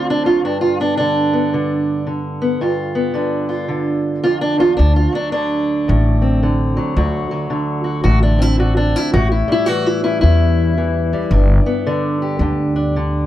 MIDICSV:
0, 0, Header, 1, 3, 480
1, 0, Start_track
1, 0, Tempo, 543478
1, 392, Time_signature, 4, 2, 24, 8
1, 11715, End_track
2, 0, Start_track
2, 0, Title_t, "Steel-string acoustic guitar"
2, 0, Program_c, 0, 25
2, 0, Note_on_c, 0, 38, 74
2, 0, Note_on_c, 0, 50, 59
2, 0, Note_on_c, 0, 54, 46
2, 0, Note_on_c, 0, 60, 46
2, 90, Note_on_c, 0, 62, 91
2, 211, Note_off_c, 0, 54, 0
2, 222, Note_on_c, 0, 54, 47
2, 227, Note_off_c, 0, 62, 0
2, 231, Note_on_c, 0, 65, 89
2, 374, Note_off_c, 0, 60, 0
2, 386, Note_off_c, 0, 38, 0
2, 391, Note_off_c, 0, 65, 0
2, 395, Note_on_c, 0, 43, 80
2, 397, Note_on_c, 0, 62, 88
2, 399, Note_off_c, 0, 54, 0
2, 535, Note_off_c, 0, 62, 0
2, 539, Note_on_c, 0, 65, 91
2, 704, Note_on_c, 0, 59, 47
2, 705, Note_off_c, 0, 65, 0
2, 713, Note_on_c, 0, 62, 90
2, 850, Note_off_c, 0, 62, 0
2, 860, Note_on_c, 0, 62, 93
2, 869, Note_off_c, 0, 50, 0
2, 881, Note_on_c, 0, 50, 58
2, 1173, Note_off_c, 0, 59, 0
2, 1176, Note_on_c, 0, 59, 42
2, 1346, Note_off_c, 0, 50, 0
2, 1356, Note_on_c, 0, 50, 63
2, 1813, Note_off_c, 0, 50, 0
2, 1824, Note_off_c, 0, 62, 0
2, 1824, Note_on_c, 0, 50, 53
2, 2124, Note_off_c, 0, 59, 0
2, 2134, Note_on_c, 0, 59, 51
2, 2288, Note_off_c, 0, 43, 0
2, 2291, Note_off_c, 0, 59, 0
2, 2306, Note_on_c, 0, 43, 78
2, 2311, Note_on_c, 0, 65, 53
2, 2607, Note_on_c, 0, 59, 51
2, 2761, Note_off_c, 0, 50, 0
2, 2771, Note_on_c, 0, 50, 62
2, 2783, Note_on_c, 0, 62, 48
2, 3071, Note_off_c, 0, 65, 0
2, 3081, Note_on_c, 0, 65, 48
2, 3253, Note_off_c, 0, 50, 0
2, 3253, Note_on_c, 0, 50, 57
2, 3730, Note_off_c, 0, 65, 0
2, 3740, Note_on_c, 0, 65, 96
2, 3744, Note_off_c, 0, 43, 0
2, 3747, Note_on_c, 0, 41, 68
2, 3894, Note_off_c, 0, 65, 0
2, 3897, Note_off_c, 0, 62, 0
2, 3897, Note_on_c, 0, 62, 100
2, 4043, Note_off_c, 0, 41, 0
2, 4046, Note_on_c, 0, 40, 66
2, 4059, Note_off_c, 0, 62, 0
2, 4062, Note_on_c, 0, 65, 97
2, 4197, Note_off_c, 0, 50, 0
2, 4205, Note_off_c, 0, 59, 0
2, 4207, Note_off_c, 0, 65, 0
2, 4211, Note_on_c, 0, 62, 101
2, 4226, Note_off_c, 0, 40, 0
2, 4229, Note_on_c, 0, 38, 77
2, 4378, Note_off_c, 0, 62, 0
2, 4381, Note_on_c, 0, 65, 89
2, 4527, Note_on_c, 0, 54, 54
2, 4544, Note_off_c, 0, 65, 0
2, 4550, Note_on_c, 0, 62, 104
2, 4689, Note_off_c, 0, 62, 0
2, 4700, Note_on_c, 0, 62, 99
2, 4716, Note_on_c, 0, 50, 63
2, 5193, Note_on_c, 0, 45, 56
2, 5492, Note_on_c, 0, 60, 48
2, 5662, Note_off_c, 0, 62, 0
2, 5666, Note_off_c, 0, 50, 0
2, 5669, Note_off_c, 0, 45, 0
2, 5677, Note_on_c, 0, 50, 58
2, 5964, Note_off_c, 0, 54, 0
2, 5977, Note_on_c, 0, 54, 56
2, 6128, Note_off_c, 0, 60, 0
2, 6143, Note_off_c, 0, 38, 0
2, 6153, Note_on_c, 0, 38, 77
2, 6158, Note_on_c, 0, 66, 50
2, 6446, Note_off_c, 0, 54, 0
2, 6456, Note_on_c, 0, 54, 50
2, 6613, Note_off_c, 0, 50, 0
2, 6624, Note_on_c, 0, 50, 67
2, 6914, Note_off_c, 0, 66, 0
2, 6925, Note_on_c, 0, 66, 46
2, 7087, Note_off_c, 0, 66, 0
2, 7098, Note_on_c, 0, 66, 114
2, 7103, Note_on_c, 0, 45, 55
2, 7262, Note_off_c, 0, 66, 0
2, 7265, Note_on_c, 0, 62, 86
2, 7408, Note_on_c, 0, 60, 45
2, 7433, Note_off_c, 0, 62, 0
2, 7433, Note_on_c, 0, 64, 96
2, 7577, Note_off_c, 0, 50, 0
2, 7585, Note_off_c, 0, 45, 0
2, 7587, Note_on_c, 0, 50, 59
2, 7589, Note_off_c, 0, 64, 0
2, 7593, Note_on_c, 0, 66, 75
2, 7741, Note_off_c, 0, 66, 0
2, 7745, Note_on_c, 0, 62, 95
2, 7912, Note_off_c, 0, 62, 0
2, 7912, Note_on_c, 0, 64, 95
2, 8048, Note_off_c, 0, 60, 0
2, 8064, Note_off_c, 0, 64, 0
2, 8067, Note_on_c, 0, 45, 82
2, 8067, Note_on_c, 0, 66, 112
2, 8068, Note_off_c, 0, 50, 0
2, 8071, Note_off_c, 0, 38, 0
2, 8075, Note_off_c, 0, 54, 0
2, 8225, Note_off_c, 0, 66, 0
2, 8228, Note_on_c, 0, 64, 74
2, 8372, Note_on_c, 0, 55, 51
2, 8388, Note_off_c, 0, 64, 0
2, 8407, Note_on_c, 0, 64, 111
2, 8532, Note_off_c, 0, 64, 0
2, 8532, Note_on_c, 0, 66, 110
2, 8552, Note_on_c, 0, 52, 61
2, 8711, Note_off_c, 0, 66, 0
2, 8711, Note_on_c, 0, 64, 85
2, 8855, Note_off_c, 0, 64, 0
2, 8862, Note_on_c, 0, 61, 45
2, 8866, Note_on_c, 0, 64, 90
2, 9007, Note_off_c, 0, 64, 0
2, 9017, Note_on_c, 0, 64, 97
2, 9029, Note_off_c, 0, 45, 0
2, 9034, Note_on_c, 0, 40, 58
2, 9507, Note_off_c, 0, 52, 0
2, 9518, Note_on_c, 0, 52, 54
2, 9811, Note_off_c, 0, 55, 0
2, 9829, Note_on_c, 0, 55, 53
2, 9972, Note_off_c, 0, 40, 0
2, 9973, Note_off_c, 0, 52, 0
2, 9978, Note_off_c, 0, 61, 0
2, 9980, Note_off_c, 0, 55, 0
2, 10000, Note_on_c, 0, 43, 73
2, 10009, Note_on_c, 0, 62, 54
2, 10300, Note_on_c, 0, 59, 55
2, 10467, Note_off_c, 0, 64, 0
2, 10477, Note_off_c, 0, 62, 0
2, 10479, Note_on_c, 0, 50, 67
2, 10481, Note_on_c, 0, 62, 51
2, 10793, Note_on_c, 0, 67, 49
2, 10950, Note_off_c, 0, 50, 0
2, 10960, Note_on_c, 0, 50, 54
2, 11264, Note_off_c, 0, 62, 0
2, 11268, Note_on_c, 0, 62, 48
2, 11438, Note_off_c, 0, 50, 0
2, 11449, Note_on_c, 0, 50, 62
2, 11715, Note_off_c, 0, 43, 0
2, 11715, Note_off_c, 0, 50, 0
2, 11715, Note_off_c, 0, 59, 0
2, 11715, Note_off_c, 0, 62, 0
2, 11715, Note_off_c, 0, 67, 0
2, 11715, End_track
3, 0, Start_track
3, 0, Title_t, "Upright bass"
3, 0, Program_c, 1, 32
3, 4231, Note_on_c, 1, 38, 92
3, 4471, Note_off_c, 1, 38, 0
3, 5203, Note_on_c, 1, 33, 91
3, 5982, Note_off_c, 1, 33, 0
3, 6152, Note_on_c, 1, 38, 89
3, 6392, Note_off_c, 1, 38, 0
3, 7106, Note_on_c, 1, 33, 79
3, 7893, Note_off_c, 1, 33, 0
3, 8069, Note_on_c, 1, 33, 97
3, 8311, Note_off_c, 1, 33, 0
3, 9038, Note_on_c, 1, 40, 91
3, 9822, Note_off_c, 1, 40, 0
3, 9987, Note_on_c, 1, 31, 101
3, 10232, Note_off_c, 1, 31, 0
3, 10945, Note_on_c, 1, 38, 82
3, 11715, Note_off_c, 1, 38, 0
3, 11715, End_track
0, 0, End_of_file